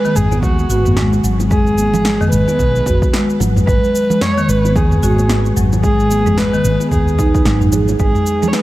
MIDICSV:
0, 0, Header, 1, 5, 480
1, 0, Start_track
1, 0, Key_signature, 5, "minor"
1, 0, Tempo, 540541
1, 1343, Time_signature, 4, 2, 24, 8
1, 7655, End_track
2, 0, Start_track
2, 0, Title_t, "Kamancheh"
2, 0, Program_c, 0, 110
2, 0, Note_on_c, 0, 71, 103
2, 143, Note_on_c, 0, 68, 94
2, 156, Note_off_c, 0, 71, 0
2, 380, Note_off_c, 0, 68, 0
2, 385, Note_on_c, 0, 66, 78
2, 1069, Note_off_c, 0, 66, 0
2, 1336, Note_on_c, 0, 68, 100
2, 2024, Note_off_c, 0, 68, 0
2, 2052, Note_on_c, 0, 71, 115
2, 2982, Note_off_c, 0, 71, 0
2, 3259, Note_on_c, 0, 71, 109
2, 3744, Note_on_c, 0, 73, 102
2, 3757, Note_off_c, 0, 71, 0
2, 3989, Note_on_c, 0, 71, 102
2, 4002, Note_off_c, 0, 73, 0
2, 4229, Note_on_c, 0, 68, 85
2, 4243, Note_off_c, 0, 71, 0
2, 4946, Note_off_c, 0, 68, 0
2, 5182, Note_on_c, 0, 68, 101
2, 5662, Note_on_c, 0, 71, 112
2, 5675, Note_off_c, 0, 68, 0
2, 6142, Note_off_c, 0, 71, 0
2, 6148, Note_on_c, 0, 68, 81
2, 6830, Note_off_c, 0, 68, 0
2, 7113, Note_on_c, 0, 68, 89
2, 7529, Note_on_c, 0, 73, 66
2, 7543, Note_off_c, 0, 68, 0
2, 7576, Note_on_c, 0, 71, 90
2, 7590, Note_off_c, 0, 73, 0
2, 7655, Note_off_c, 0, 71, 0
2, 7655, End_track
3, 0, Start_track
3, 0, Title_t, "Marimba"
3, 0, Program_c, 1, 12
3, 43, Note_on_c, 1, 51, 97
3, 100, Note_off_c, 1, 51, 0
3, 281, Note_on_c, 1, 59, 70
3, 377, Note_off_c, 1, 59, 0
3, 625, Note_on_c, 1, 66, 71
3, 757, Note_off_c, 1, 66, 0
3, 865, Note_on_c, 1, 56, 73
3, 1094, Note_off_c, 1, 56, 0
3, 1101, Note_on_c, 1, 54, 75
3, 1182, Note_off_c, 1, 54, 0
3, 1340, Note_on_c, 1, 56, 82
3, 1474, Note_off_c, 1, 56, 0
3, 1722, Note_on_c, 1, 56, 68
3, 1818, Note_off_c, 1, 56, 0
3, 1961, Note_on_c, 1, 51, 100
3, 2019, Note_off_c, 1, 51, 0
3, 2202, Note_on_c, 1, 59, 68
3, 2298, Note_off_c, 1, 59, 0
3, 2543, Note_on_c, 1, 66, 69
3, 2676, Note_off_c, 1, 66, 0
3, 2781, Note_on_c, 1, 56, 76
3, 3012, Note_off_c, 1, 56, 0
3, 3018, Note_on_c, 1, 54, 75
3, 3100, Note_off_c, 1, 54, 0
3, 3263, Note_on_c, 1, 56, 83
3, 3396, Note_off_c, 1, 56, 0
3, 3643, Note_on_c, 1, 56, 69
3, 3738, Note_off_c, 1, 56, 0
3, 3886, Note_on_c, 1, 51, 105
3, 3942, Note_off_c, 1, 51, 0
3, 4127, Note_on_c, 1, 59, 67
3, 4220, Note_off_c, 1, 59, 0
3, 4466, Note_on_c, 1, 66, 75
3, 4598, Note_off_c, 1, 66, 0
3, 4700, Note_on_c, 1, 56, 73
3, 4931, Note_off_c, 1, 56, 0
3, 4942, Note_on_c, 1, 54, 73
3, 5022, Note_off_c, 1, 54, 0
3, 5180, Note_on_c, 1, 56, 75
3, 5314, Note_off_c, 1, 56, 0
3, 5561, Note_on_c, 1, 56, 71
3, 5657, Note_off_c, 1, 56, 0
3, 5803, Note_on_c, 1, 51, 97
3, 5860, Note_off_c, 1, 51, 0
3, 6042, Note_on_c, 1, 59, 74
3, 6137, Note_off_c, 1, 59, 0
3, 6382, Note_on_c, 1, 63, 95
3, 6508, Note_off_c, 1, 63, 0
3, 6622, Note_on_c, 1, 54, 72
3, 6748, Note_off_c, 1, 54, 0
3, 6759, Note_on_c, 1, 63, 66
3, 6851, Note_off_c, 1, 63, 0
3, 6862, Note_on_c, 1, 68, 73
3, 6942, Note_off_c, 1, 68, 0
3, 7102, Note_on_c, 1, 56, 77
3, 7236, Note_off_c, 1, 56, 0
3, 7479, Note_on_c, 1, 56, 71
3, 7576, Note_off_c, 1, 56, 0
3, 7655, End_track
4, 0, Start_track
4, 0, Title_t, "Fretless electric bass"
4, 0, Program_c, 2, 35
4, 143, Note_on_c, 2, 32, 69
4, 380, Note_on_c, 2, 39, 80
4, 394, Note_off_c, 2, 32, 0
4, 564, Note_off_c, 2, 39, 0
4, 618, Note_on_c, 2, 32, 86
4, 1054, Note_off_c, 2, 32, 0
4, 1098, Note_on_c, 2, 32, 68
4, 2015, Note_off_c, 2, 32, 0
4, 2065, Note_on_c, 2, 32, 67
4, 2164, Note_off_c, 2, 32, 0
4, 2303, Note_on_c, 2, 35, 88
4, 2485, Note_off_c, 2, 35, 0
4, 2545, Note_on_c, 2, 30, 76
4, 2644, Note_off_c, 2, 30, 0
4, 3022, Note_on_c, 2, 32, 85
4, 3205, Note_off_c, 2, 32, 0
4, 3263, Note_on_c, 2, 32, 94
4, 3363, Note_off_c, 2, 32, 0
4, 3986, Note_on_c, 2, 32, 72
4, 4225, Note_on_c, 2, 39, 91
4, 4239, Note_off_c, 2, 32, 0
4, 4407, Note_off_c, 2, 39, 0
4, 4466, Note_on_c, 2, 32, 91
4, 4898, Note_off_c, 2, 32, 0
4, 4948, Note_on_c, 2, 32, 68
4, 5860, Note_off_c, 2, 32, 0
4, 5903, Note_on_c, 2, 32, 72
4, 6003, Note_off_c, 2, 32, 0
4, 6142, Note_on_c, 2, 39, 71
4, 6576, Note_off_c, 2, 39, 0
4, 6620, Note_on_c, 2, 32, 74
4, 7056, Note_off_c, 2, 32, 0
4, 7100, Note_on_c, 2, 32, 89
4, 7201, Note_off_c, 2, 32, 0
4, 7655, End_track
5, 0, Start_track
5, 0, Title_t, "Drums"
5, 44, Note_on_c, 9, 69, 22
5, 48, Note_on_c, 9, 63, 55
5, 133, Note_off_c, 9, 69, 0
5, 137, Note_off_c, 9, 63, 0
5, 139, Note_on_c, 9, 45, 73
5, 144, Note_on_c, 9, 69, 74
5, 228, Note_off_c, 9, 45, 0
5, 233, Note_off_c, 9, 69, 0
5, 283, Note_on_c, 9, 69, 31
5, 284, Note_on_c, 9, 60, 48
5, 372, Note_off_c, 9, 69, 0
5, 373, Note_off_c, 9, 60, 0
5, 374, Note_on_c, 9, 64, 70
5, 380, Note_on_c, 9, 36, 100
5, 385, Note_on_c, 9, 69, 37
5, 463, Note_off_c, 9, 64, 0
5, 469, Note_off_c, 9, 36, 0
5, 474, Note_off_c, 9, 69, 0
5, 520, Note_on_c, 9, 63, 36
5, 523, Note_on_c, 9, 69, 22
5, 608, Note_off_c, 9, 63, 0
5, 612, Note_off_c, 9, 69, 0
5, 622, Note_on_c, 9, 69, 74
5, 711, Note_off_c, 9, 69, 0
5, 759, Note_on_c, 9, 45, 75
5, 763, Note_on_c, 9, 69, 31
5, 764, Note_on_c, 9, 63, 74
5, 848, Note_off_c, 9, 45, 0
5, 852, Note_off_c, 9, 69, 0
5, 853, Note_off_c, 9, 63, 0
5, 858, Note_on_c, 9, 38, 90
5, 862, Note_on_c, 9, 69, 40
5, 946, Note_off_c, 9, 38, 0
5, 951, Note_off_c, 9, 69, 0
5, 1001, Note_on_c, 9, 60, 36
5, 1002, Note_on_c, 9, 69, 21
5, 1090, Note_off_c, 9, 60, 0
5, 1091, Note_off_c, 9, 69, 0
5, 1102, Note_on_c, 9, 69, 70
5, 1191, Note_off_c, 9, 69, 0
5, 1243, Note_on_c, 9, 60, 68
5, 1243, Note_on_c, 9, 69, 31
5, 1332, Note_off_c, 9, 60, 0
5, 1332, Note_off_c, 9, 69, 0
5, 1338, Note_on_c, 9, 45, 72
5, 1342, Note_on_c, 9, 36, 109
5, 1342, Note_on_c, 9, 69, 39
5, 1427, Note_off_c, 9, 45, 0
5, 1430, Note_off_c, 9, 36, 0
5, 1431, Note_off_c, 9, 69, 0
5, 1482, Note_on_c, 9, 69, 22
5, 1571, Note_off_c, 9, 69, 0
5, 1580, Note_on_c, 9, 63, 62
5, 1581, Note_on_c, 9, 69, 78
5, 1669, Note_off_c, 9, 63, 0
5, 1670, Note_off_c, 9, 69, 0
5, 1719, Note_on_c, 9, 64, 93
5, 1720, Note_on_c, 9, 63, 32
5, 1726, Note_on_c, 9, 69, 33
5, 1808, Note_off_c, 9, 64, 0
5, 1809, Note_off_c, 9, 63, 0
5, 1814, Note_off_c, 9, 69, 0
5, 1820, Note_on_c, 9, 38, 100
5, 1824, Note_on_c, 9, 69, 42
5, 1909, Note_off_c, 9, 38, 0
5, 1913, Note_off_c, 9, 69, 0
5, 1959, Note_on_c, 9, 63, 55
5, 1963, Note_on_c, 9, 45, 73
5, 1968, Note_on_c, 9, 69, 22
5, 2048, Note_off_c, 9, 63, 0
5, 2052, Note_off_c, 9, 45, 0
5, 2057, Note_off_c, 9, 69, 0
5, 2064, Note_on_c, 9, 69, 77
5, 2153, Note_off_c, 9, 69, 0
5, 2203, Note_on_c, 9, 60, 49
5, 2205, Note_on_c, 9, 69, 32
5, 2292, Note_off_c, 9, 60, 0
5, 2294, Note_off_c, 9, 69, 0
5, 2302, Note_on_c, 9, 36, 62
5, 2306, Note_on_c, 9, 69, 43
5, 2390, Note_off_c, 9, 36, 0
5, 2394, Note_off_c, 9, 69, 0
5, 2447, Note_on_c, 9, 69, 23
5, 2536, Note_off_c, 9, 69, 0
5, 2541, Note_on_c, 9, 36, 90
5, 2543, Note_on_c, 9, 45, 69
5, 2545, Note_on_c, 9, 60, 63
5, 2548, Note_on_c, 9, 69, 77
5, 2630, Note_off_c, 9, 36, 0
5, 2632, Note_off_c, 9, 45, 0
5, 2634, Note_off_c, 9, 60, 0
5, 2636, Note_off_c, 9, 69, 0
5, 2682, Note_on_c, 9, 36, 98
5, 2688, Note_on_c, 9, 69, 32
5, 2771, Note_off_c, 9, 36, 0
5, 2777, Note_off_c, 9, 69, 0
5, 2784, Note_on_c, 9, 38, 101
5, 2789, Note_on_c, 9, 69, 43
5, 2873, Note_off_c, 9, 38, 0
5, 2878, Note_off_c, 9, 69, 0
5, 2928, Note_on_c, 9, 69, 22
5, 3017, Note_off_c, 9, 69, 0
5, 3021, Note_on_c, 9, 64, 83
5, 3024, Note_on_c, 9, 60, 64
5, 3032, Note_on_c, 9, 69, 77
5, 3110, Note_off_c, 9, 64, 0
5, 3113, Note_off_c, 9, 60, 0
5, 3121, Note_off_c, 9, 69, 0
5, 3164, Note_on_c, 9, 60, 61
5, 3168, Note_on_c, 9, 45, 69
5, 3172, Note_on_c, 9, 69, 31
5, 3253, Note_off_c, 9, 60, 0
5, 3257, Note_off_c, 9, 45, 0
5, 3261, Note_off_c, 9, 69, 0
5, 3264, Note_on_c, 9, 36, 114
5, 3272, Note_on_c, 9, 69, 44
5, 3352, Note_off_c, 9, 36, 0
5, 3361, Note_off_c, 9, 69, 0
5, 3410, Note_on_c, 9, 69, 22
5, 3499, Note_off_c, 9, 69, 0
5, 3511, Note_on_c, 9, 69, 78
5, 3600, Note_off_c, 9, 69, 0
5, 3643, Note_on_c, 9, 64, 83
5, 3649, Note_on_c, 9, 69, 35
5, 3732, Note_off_c, 9, 64, 0
5, 3738, Note_off_c, 9, 69, 0
5, 3743, Note_on_c, 9, 38, 101
5, 3743, Note_on_c, 9, 45, 72
5, 3747, Note_on_c, 9, 69, 44
5, 3831, Note_off_c, 9, 38, 0
5, 3831, Note_off_c, 9, 45, 0
5, 3836, Note_off_c, 9, 69, 0
5, 3885, Note_on_c, 9, 63, 56
5, 3888, Note_on_c, 9, 69, 24
5, 3974, Note_off_c, 9, 63, 0
5, 3976, Note_off_c, 9, 69, 0
5, 3990, Note_on_c, 9, 69, 79
5, 4078, Note_off_c, 9, 69, 0
5, 4128, Note_on_c, 9, 60, 51
5, 4132, Note_on_c, 9, 69, 32
5, 4217, Note_off_c, 9, 60, 0
5, 4220, Note_off_c, 9, 69, 0
5, 4224, Note_on_c, 9, 36, 110
5, 4226, Note_on_c, 9, 64, 88
5, 4228, Note_on_c, 9, 69, 43
5, 4313, Note_off_c, 9, 36, 0
5, 4315, Note_off_c, 9, 64, 0
5, 4317, Note_off_c, 9, 69, 0
5, 4363, Note_on_c, 9, 45, 75
5, 4368, Note_on_c, 9, 69, 23
5, 4378, Note_on_c, 9, 63, 35
5, 4452, Note_off_c, 9, 45, 0
5, 4457, Note_off_c, 9, 69, 0
5, 4467, Note_off_c, 9, 63, 0
5, 4467, Note_on_c, 9, 69, 76
5, 4556, Note_off_c, 9, 69, 0
5, 4603, Note_on_c, 9, 63, 67
5, 4608, Note_on_c, 9, 69, 31
5, 4692, Note_off_c, 9, 63, 0
5, 4697, Note_off_c, 9, 69, 0
5, 4702, Note_on_c, 9, 38, 96
5, 4707, Note_on_c, 9, 69, 46
5, 4791, Note_off_c, 9, 38, 0
5, 4796, Note_off_c, 9, 69, 0
5, 4836, Note_on_c, 9, 60, 34
5, 4846, Note_on_c, 9, 69, 22
5, 4925, Note_off_c, 9, 60, 0
5, 4935, Note_off_c, 9, 69, 0
5, 4941, Note_on_c, 9, 45, 70
5, 4946, Note_on_c, 9, 69, 82
5, 5030, Note_off_c, 9, 45, 0
5, 5035, Note_off_c, 9, 69, 0
5, 5085, Note_on_c, 9, 69, 31
5, 5086, Note_on_c, 9, 60, 61
5, 5174, Note_off_c, 9, 69, 0
5, 5175, Note_off_c, 9, 60, 0
5, 5182, Note_on_c, 9, 36, 105
5, 5184, Note_on_c, 9, 69, 40
5, 5271, Note_off_c, 9, 36, 0
5, 5273, Note_off_c, 9, 69, 0
5, 5326, Note_on_c, 9, 69, 22
5, 5415, Note_off_c, 9, 69, 0
5, 5424, Note_on_c, 9, 69, 77
5, 5429, Note_on_c, 9, 63, 58
5, 5513, Note_off_c, 9, 69, 0
5, 5517, Note_off_c, 9, 63, 0
5, 5560, Note_on_c, 9, 45, 72
5, 5565, Note_on_c, 9, 69, 33
5, 5570, Note_on_c, 9, 64, 79
5, 5574, Note_on_c, 9, 63, 33
5, 5649, Note_off_c, 9, 45, 0
5, 5654, Note_off_c, 9, 69, 0
5, 5659, Note_off_c, 9, 64, 0
5, 5662, Note_on_c, 9, 38, 96
5, 5663, Note_off_c, 9, 63, 0
5, 5667, Note_on_c, 9, 69, 41
5, 5751, Note_off_c, 9, 38, 0
5, 5755, Note_off_c, 9, 69, 0
5, 5806, Note_on_c, 9, 63, 49
5, 5806, Note_on_c, 9, 69, 23
5, 5895, Note_off_c, 9, 63, 0
5, 5895, Note_off_c, 9, 69, 0
5, 5902, Note_on_c, 9, 69, 78
5, 5991, Note_off_c, 9, 69, 0
5, 6039, Note_on_c, 9, 60, 42
5, 6045, Note_on_c, 9, 69, 34
5, 6127, Note_off_c, 9, 60, 0
5, 6134, Note_off_c, 9, 69, 0
5, 6140, Note_on_c, 9, 45, 71
5, 6142, Note_on_c, 9, 36, 63
5, 6144, Note_on_c, 9, 69, 45
5, 6228, Note_off_c, 9, 45, 0
5, 6231, Note_off_c, 9, 36, 0
5, 6233, Note_off_c, 9, 69, 0
5, 6286, Note_on_c, 9, 69, 22
5, 6375, Note_off_c, 9, 69, 0
5, 6382, Note_on_c, 9, 60, 57
5, 6383, Note_on_c, 9, 36, 97
5, 6385, Note_on_c, 9, 69, 74
5, 6471, Note_off_c, 9, 60, 0
5, 6472, Note_off_c, 9, 36, 0
5, 6474, Note_off_c, 9, 69, 0
5, 6523, Note_on_c, 9, 36, 101
5, 6526, Note_on_c, 9, 69, 30
5, 6612, Note_off_c, 9, 36, 0
5, 6615, Note_off_c, 9, 69, 0
5, 6619, Note_on_c, 9, 38, 88
5, 6624, Note_on_c, 9, 69, 43
5, 6708, Note_off_c, 9, 38, 0
5, 6712, Note_off_c, 9, 69, 0
5, 6758, Note_on_c, 9, 45, 77
5, 6763, Note_on_c, 9, 69, 22
5, 6847, Note_off_c, 9, 45, 0
5, 6852, Note_off_c, 9, 69, 0
5, 6859, Note_on_c, 9, 60, 60
5, 6859, Note_on_c, 9, 69, 78
5, 6871, Note_on_c, 9, 64, 84
5, 6948, Note_off_c, 9, 60, 0
5, 6948, Note_off_c, 9, 69, 0
5, 6960, Note_off_c, 9, 64, 0
5, 6999, Note_on_c, 9, 69, 33
5, 7005, Note_on_c, 9, 60, 65
5, 7088, Note_off_c, 9, 69, 0
5, 7094, Note_off_c, 9, 60, 0
5, 7099, Note_on_c, 9, 69, 43
5, 7101, Note_on_c, 9, 36, 100
5, 7188, Note_off_c, 9, 69, 0
5, 7190, Note_off_c, 9, 36, 0
5, 7236, Note_on_c, 9, 45, 70
5, 7241, Note_on_c, 9, 69, 19
5, 7325, Note_off_c, 9, 45, 0
5, 7329, Note_off_c, 9, 69, 0
5, 7339, Note_on_c, 9, 69, 74
5, 7428, Note_off_c, 9, 69, 0
5, 7482, Note_on_c, 9, 69, 32
5, 7485, Note_on_c, 9, 64, 92
5, 7571, Note_off_c, 9, 69, 0
5, 7574, Note_off_c, 9, 64, 0
5, 7575, Note_on_c, 9, 38, 93
5, 7580, Note_on_c, 9, 69, 42
5, 7655, Note_off_c, 9, 38, 0
5, 7655, Note_off_c, 9, 69, 0
5, 7655, End_track
0, 0, End_of_file